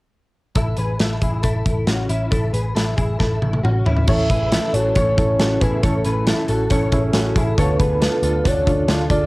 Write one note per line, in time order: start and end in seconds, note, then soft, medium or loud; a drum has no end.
0.55 0.74 A1 medium
0.55 0.78 E4 medium
0.55 0.78 A4 medium
0.55 kick loud
0.55 closed hi-hat medium
0.77 0.96 A1 medium
0.77 0.99 G#4 soft
0.77 1.00 B4 medium
0.77 closed hi-hat medium
1.00 1.18 A1 medium
1.00 1.22 E4 soft
1.00 1.21 A4 medium
1.00 snare loud
1.00 closed hi-hat medium
1.22 1.40 A1 medium
1.22 1.43 E4 soft
1.22 1.43 G#4 medium
1.22 kick medium
1.22 closed hi-hat medium
1.43 1.62 A1 medium
1.43 1.85 E4 medium
1.43 1.85 A4 medium
1.43 kick medium
1.43 closed hi-hat medium
1.66 1.84 A1 medium
1.66 kick medium
1.66 closed hi-hat medium
1.87 2.06 A1 medium
1.87 2.09 C#4 medium
1.87 2.10 F#4 medium
1.87 snare medium
1.87 closed hi-hat medium
2.09 2.28 A1 medium
2.09 2.32 C#4 medium
2.09 2.30 E4 medium
2.09 closed hi-hat medium
2.31 2.50 A1 medium
2.31 2.53 E4 medium
2.31 2.53 A4 medium
2.31 kick medium
2.31 closed hi-hat medium
2.53 2.72 A1 medium
2.53 2.74 G#4 soft
2.53 2.76 B4 medium
2.53 closed hi-hat medium
2.75 2.94 A1 medium
2.75 2.96 E4 medium
2.75 2.96 A4 medium
2.75 snare medium
2.75 closed hi-hat medium
2.96 3.16 A1 medium
2.96 3.18 E4 soft
2.96 3.19 G#4 medium
2.96 kick medium
2.96 closed hi-hat medium
3.19 3.38 A1 medium
3.19 3.61 E4 medium
3.19 3.61 A4 medium
3.19 kick medium
3.19 snare soft
3.42 3.60 A1 medium
3.42 high tom medium
3.53 high tom medium
3.63 3.82 A1 medium
3.63 3.85 C#4 medium
3.63 3.86 F#4 medium
3.63 mid tom medium
3.86 4.04 A1 medium
3.86 4.08 C#4 medium
3.86 4.08 E4 medium
3.86 floor tom medium
3.97 floor tom medium
4.07 4.26 A1 medium
4.07 4.30 A2 medium
4.07 4.30 E3 medium
4.07 4.30 A3 loud
4.07 4.26 C#4 medium
4.07 4.30 C#4 medium
4.07 4.27 E4 medium
4.07 4.29 E4 medium
4.07 4.27 A4 loud
4.07 4.30 A4 medium
4.07 4.30 C#5 medium
4.07 4.75 E5 loud
4.07 kick loud
4.07 crash medium
4.29 4.57 A1 loud
4.29 4.51 A3 soft
4.29 4.48 C#4 medium
4.29 4.52 C#4 soft
4.29 4.52 E4 soft
4.29 4.49 E4 medium
4.29 4.52 G#4 medium
4.29 4.52 B4 medium
4.29 4.49 B4 medium
4.29 kick medium
4.29 closed hi-hat medium
4.51 4.95 E3 medium
4.51 4.96 A3 medium
4.51 4.70 C#4 medium
4.51 4.96 C#4 medium
4.51 4.71 E4 medium
4.51 4.74 E4 medium
4.51 4.96 E4 medium
4.51 4.73 A4 medium
4.51 4.71 A4 medium
4.51 snare loud
4.51 closed hi-hat medium
4.72 4.91 A1 loud
4.72 4.92 C#4 medium
4.72 4.92 E4 medium
4.72 4.96 F#4 medium
4.72 4.93 A4 medium
4.72 4.96 A4 medium
4.72 4.93 C#5 loud
4.72 closed hi-hat medium
4.94 5.14 A1 loud
4.94 5.17 A2 medium
4.94 5.17 E3 medium
4.94 5.18 A3 medium
4.94 5.14 C#4 medium
4.94 5.18 C#4 medium
4.94 5.15 E4 medium
4.94 5.16 E4 medium
4.94 5.15 A4 medium
4.94 5.37 A4 medium
4.94 5.62 C#5 loud
4.94 5.37 C#5 medium
4.94 kick medium
4.94 closed hi-hat medium
5.17 5.36 A1 loud
5.17 5.64 A3 soft
5.17 5.36 C#4 medium
5.17 5.61 C#4 medium
5.17 5.60 E4 medium
5.17 5.36 E4 medium
5.17 5.37 A4 loud
5.17 kick loud
5.17 closed hi-hat medium
5.39 5.57 A1 loud
5.39 5.58 C#4 loud
5.39 5.62 C#4 medium
5.39 5.58 E4 medium
5.39 5.61 F#4 medium
5.39 5.59 A4 medium
5.39 snare loud
5.39 closed hi-hat medium
5.61 5.79 A1 loud
5.61 5.83 A3 soft
5.61 5.80 C#4 medium
5.61 5.83 C#4 soft
5.61 5.83 E4 medium
5.61 5.80 E4 medium
5.61 5.83 E4 medium
5.61 5.83 G#4 medium
5.61 5.81 A4 medium
5.61 5.84 B4 medium
5.61 kick loud
5.61 closed hi-hat medium
5.82 6.01 A1 medium
5.82 6.27 A2 medium
5.82 6.25 E3 medium
5.82 6.27 A3 medium
5.82 6.02 C#4 medium
5.82 6.26 C#4 loud
5.82 6.02 E4 medium
5.82 6.28 E4 medium
5.82 6.48 A4 medium
5.82 6.05 A4 medium
5.82 6.03 A4 loud
5.82 6.04 C#5 medium
5.82 kick loud
5.82 closed hi-hat medium
6.05 6.32 A1 medium
6.05 6.24 C#4 medium
6.05 6.24 E4 medium
6.05 6.27 G#4 medium
6.05 6.24 A4 medium
6.05 6.27 B4 medium
6.05 closed hi-hat medium
6.26 6.69 E3 medium
6.26 6.70 A3 medium
6.26 6.46 C#4 medium
6.26 6.70 C#4 medium
6.26 6.46 E4 medium
6.26 6.49 E4 medium
6.26 6.71 E4 medium
6.26 6.47 A4 medium
6.26 6.46 A4 medium
6.26 snare loud
6.26 closed hi-hat medium
6.48 6.67 A1 loud
6.48 6.67 C#4 medium
6.48 6.68 E4 medium
6.48 6.71 F#4 medium
6.48 6.70 A4 medium
6.48 6.68 A4 medium
6.48 closed hi-hat medium
6.69 6.89 A1 loud
6.69 6.92 A2 medium
6.69 6.92 E3 medium
6.69 6.92 A3 medium
6.69 6.89 C#4 medium
6.69 6.92 C#4 medium
6.69 6.90 E4 medium
6.69 7.12 A4 medium
6.69 6.90 A4 medium
6.69 7.11 C#5 medium
6.69 kick medium
6.69 closed hi-hat loud
6.91 7.10 A1 medium
6.91 7.37 A3 soft
6.91 7.11 C#4 loud
6.91 7.35 C#4 medium
6.91 7.33 E4 medium
6.91 7.12 E4 loud
6.91 7.12 G#4 loud
6.91 kick medium
6.91 closed hi-hat medium
7.13 7.32 A1 loud
7.13 7.33 C#4 loud
7.13 7.37 C#4 medium
7.13 7.33 E4 medium
7.13 7.36 F#4 medium
7.13 7.33 F#4 loud
7.13 7.60 A4 medium
7.13 snare loud
7.13 closed hi-hat medium
7.35 7.54 A1 loud
7.35 7.57 A3 soft
7.35 7.55 C#4 medium
7.35 7.58 C#4 soft
7.35 7.57 E4 medium
7.35 7.55 E4 medium
7.35 7.58 E4 medium
7.35 7.58 G#4 medium
7.35 7.55 A4 medium
7.35 kick loud
7.35 closed hi-hat medium
7.57 7.76 D2 medium
7.57 7.99 D3 medium
7.57 8.00 A3 medium
7.57 7.77 D4 medium
7.57 8.01 D4 medium
7.57 7.77 F4 medium
7.57 8.02 F4 loud
7.57 7.77 A4 loud
7.57 7.80 A4 medium
7.57 8.49 B4 loud
7.57 7.79 C#5 loud
7.57 kick loud
7.57 closed hi-hat medium
7.78 8.07 D2 medium
7.78 7.98 D4 medium
7.78 7.98 F4 medium
7.78 8.01 G#4 medium
7.78 7.98 A4 medium
7.78 8.01 B4 medium
7.78 kick loud
7.78 closed hi-hat medium
8.00 8.44 D3 medium
8.00 8.45 A3 medium
8.00 8.20 D4 medium
8.00 8.45 D4 medium
8.00 8.20 F4 medium
8.00 8.23 F4 medium
8.00 8.46 F4 medium
8.00 8.22 A4 medium
8.00 8.20 A4 medium
8.00 snare loud
8.00 closed hi-hat medium
8.22 8.41 D2 loud
8.22 8.42 D4 medium
8.22 8.42 F4 medium
8.22 8.45 F4 medium
8.22 8.45 A4 medium
8.22 8.42 A4 medium
8.22 closed hi-hat medium
8.44 8.63 D2 loud
8.44 8.67 D3 medium
8.44 8.67 A3 medium
8.44 8.63 D4 medium
8.44 8.86 D4 medium
8.44 8.68 D4 medium
8.44 8.63 F4 medium
8.44 8.66 F4 medium
8.44 8.64 A4 medium
8.44 8.87 A4 medium
8.44 8.90 C#5 loud
8.44 kick medium
8.44 closed hi-hat medium
8.66 8.85 D2 medium
8.66 8.85 D4 medium
8.66 9.11 D4 medium
8.66 8.86 F4 medium
8.66 9.09 F4 medium
8.66 8.86 A4 loud
8.66 kick loud
8.66 closed hi-hat medium
8.70 9.12 A3 soft
8.88 9.06 D2 medium
8.88 9.07 D4 loud
8.88 9.11 D4 medium
8.88 9.08 F4 medium
8.88 9.10 F4 medium
8.88 9.08 A4 loud
8.88 snare loud
8.88 closed hi-hat medium
9.10 9.26 D2 loud
9.10 9.26 A3 soft
9.10 9.26 D4 medium
9.10 9.26 D4 soft
9.10 9.26 F4 medium
9.10 9.26 G#4 medium
9.10 9.26 A4 medium
9.10 9.26 D5 loud
9.10 kick medium
9.10 closed hi-hat medium